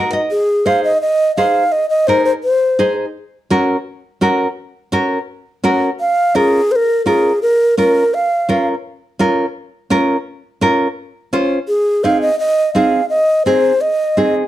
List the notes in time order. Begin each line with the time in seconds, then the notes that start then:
Already playing: D#4 F#4 A#4
0.13 D#5
0.31 G#4
0.66 D#4 G#4 C5 F5
0.84 D#5
1.01 D#5
1.37 D#4 G#4 C5 F5
1.72 D#5
1.90 D#5
2.07 D#4 G#4 A#4 C5
2.25 C5
2.44 C5
2.79 D#4 G#4 C5
3.50 C#4 F#4 A#4
4.21 C#4 F#4 A#4
4.92 C#4 F#4 A#4
5.64 C#4 F#4 A#4
6.00 F5
6.35 C#4 F4 G#4 A#4
6.72 C5
6.76 A#4
7.06 C#4 F4 G#4 A#4
7.42 A#4
7.77 C#4 F4 A#4
8.14 F5
8.49 C#4 F4 A#4
9.19 C#4 F4 A#4
9.90 C#4 F4 A#4
10.61 C#4 F4 A#4
11.33 C#4 F4 C5
11.68 G#4
12.04 C4 D#4 G#4 F5
12.21 D#5
12.39 D#5
12.74 C4 D#4 G#4 F5
13.09 D#5
13.45 C4 D#4 G#4 C5
13.81 D#5
14.17 C4 D#4 G#4